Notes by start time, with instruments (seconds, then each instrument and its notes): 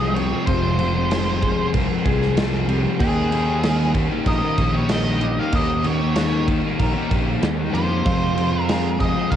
Already playing: fingered electric bass C2, distorted electric guitar F2 C3 F3, overdriven electric guitar F2 C3, clean electric guitar F4 G#4, lead electric guitar D#5
0.00 overdriven electric guitar F3 G#3 C4 G#4
0.15 distorted electric guitar F2 C3 F3, overdriven electric guitar F3 G#3 C4 G#4, lead electric guitar C#5, clean electric guitar G5, crash
0.31 distorted electric guitar C3 F3, overdriven electric guitar F3 G#3 C4 G#4
0.46 fingered electric bass F1, overdriven electric guitar F2 C3 F3 G#3 C4 G#4, distorted electric guitar F2 C3, clean electric guitar F4, lead electric guitar C5, kick, crash
0.51 distorted electric guitar F3
0.78 distorted electric guitar F2 C3, overdriven electric guitar F3 G#3 C4 G#4, crash
0.82 distorted electric guitar F3
0.94 distorted electric guitar C3 F3, overdriven electric guitar F3 G#3 C4 G#4
1.09 overdriven electric guitar F2 C3 F3 G#3 C4 G#4, clean electric guitar G#4, snare, crash
1.42 distorted electric guitar F2 C3 F3, overdriven electric guitar F3 G#3 C4 G#4, kick, crash
1.58 distorted electric guitar C3 F3, overdriven electric guitar F3 G#3 C4 G#4
1.73 fingered electric bass C2, distorted electric guitar F2 C3 F3, clean electric guitar A#4, kick, crash
1.89 distorted electric guitar C3 F3, overdriven electric guitar F3 G#3 C4 G#4
2.04 fingered electric bass C2, distorted electric guitar F2 C3 F3, overdriven electric guitar F3 G#3 C4 G#4, clean electric guitar G#4, kick, crash
2.21 distorted electric guitar C3 F3, snare
2.36 distorted electric guitar F2 C3 F3, overdriven electric guitar F2 C3 F3 G#3 C4 G#4, snare, crash
2.53 overdriven electric guitar F3 G#3 C4 G#4
2.67 distorted electric guitar F2 C3 F3, overdriven electric guitar F3 G#3 C4 G#4, clean electric guitar G4, crash
2.83 distorted electric guitar F3, overdriven electric guitar F3 G#3 C4 G#4
2.87 distorted electric guitar C3
2.99 fingered electric bass D#2, distorted electric guitar D#3 A#3 D#4, overdriven electric guitar D#3 A#3 C#4 G4, lead electric guitar G#4, clean electric guitar G5, kick, crash
3.31 distorted electric guitar D#3 A#3 D#4, overdriven electric guitar D#3 A#3 C#4 G4, crash
3.46 distorted electric guitar A#3 D#4, overdriven electric guitar A#3 C#4 G4
3.63 overdriven electric guitar D#3 A#3 C#4 G4, snare, crash
3.94 distorted electric guitar D#3 A#3 D#4, overdriven electric guitar D#3 A#3 C#4 G4, kick, crash
4.10 overdriven electric guitar A#3 C#4 G4, distorted electric guitar A#3 D#4
4.25 fingered electric bass A#1, distorted electric guitar D#3 A#3 D#4, clean electric guitar A#4, lead electric guitar D#5, kick, crash
4.41 overdriven electric guitar A#3 C#4 G4, distorted electric guitar A#3 D#4
4.58 fingered electric bass A#1, distorted electric guitar D#3 A#3 D#4, overdriven electric guitar D#3 A#3 C#4 G4, kick, crash
4.73 distorted electric guitar A#3 D#4, lead electric guitar C#5
4.88 overdriven electric guitar D#3 A#3 C#4 G4, distorted electric guitar D#3 A#3, lead electric guitar D#5, snare, crash
4.93 distorted electric guitar D#4
5.05 overdriven electric guitar A#3 C#4 G4
5.20 distorted electric guitar D#3 A#3 D#4, overdriven electric guitar D#3 A#3 C#4 G4, clean electric guitar G4, crash
5.36 overdriven electric guitar A#3 C#4 G4, distorted electric guitar A#3 D#4, lead electric guitar F5
5.52 fingered electric bass D#2, distorted electric guitar D#3 A#3 D#4, overdriven electric guitar D#3 A#3 C#4 G4, clean electric guitar G4, lead electric guitar D#5, kick, crash
5.84 distorted electric guitar D#3 A#3 D#4, overdriven electric guitar D#3 A#3 C#4 G4, lead electric guitar C#5, crash
6.00 overdriven electric guitar A#3 C#4 G4, distorted electric guitar A#3 D#4
6.16 overdriven electric guitar D#3 A#3 C#4 G4, snare, crash
6.47 distorted electric guitar D#3 A#3 D#4, overdriven electric guitar D#3 A#3 C#4 G4, kick, crash
6.63 overdriven electric guitar A#3 C#4 G4, distorted electric guitar A#3 D#4
6.78 fingered electric bass A#1, distorted electric guitar D#3 A#3 D#4, clean electric guitar A#4, kick, crash
6.95 overdriven electric guitar A#3 C#4 G4, distorted electric guitar A#3 D#4
7.10 fingered electric bass A#1, overdriven electric guitar D#3 A#3 C#4 G4, distorted electric guitar D#3 A#3, kick, crash
7.14 distorted electric guitar D#4
7.26 distorted electric guitar A#3 D#4
7.42 fingered electric bass D#2, overdriven electric guitar D#3 A#3 C#4 G4, distorted electric guitar D#3 A#3, snare, crash
7.46 distorted electric guitar D#4
7.58 overdriven electric guitar A#3 C#4 G4
7.73 fingered electric bass F2, overdriven electric guitar D#3 A#3 C#4 G4, distorted electric guitar D#3 A#3 D#4, clean electric guitar G4, lead electric guitar C5, crash
7.89 overdriven electric guitar A#3 C#4 G4, distorted electric guitar A#3 D#4
8.05 distorted electric guitar F2 C3 F3, overdriven electric guitar F2 C3 F3 G#3 C4 G#4, fingered electric bass F2, clean electric guitar F4, kick, crash
8.36 distorted electric guitar F2 C3 F3, overdriven electric guitar F3 G#3 C4 G#4, crash
8.51 distorted electric guitar C3 F3, overdriven electric guitar F3 G#3 C4 G#4
8.62 lead electric guitar A#4
8.69 overdriven electric guitar F2 C3 F3 G#3 C4 G#4, clean electric guitar G#4, snare, crash
8.99 distorted electric guitar F2 C3 F3, overdriven electric guitar F3 G#3 C4 G#4, lead electric guitar D#5, kick, crash
9.16 distorted electric guitar C3 F3, overdriven electric guitar F3 G#3 C4 G#4
9.31 fingered electric bass C2, distorted electric guitar F2, clean electric guitar A#4, lead electric guitar F5, kick, crash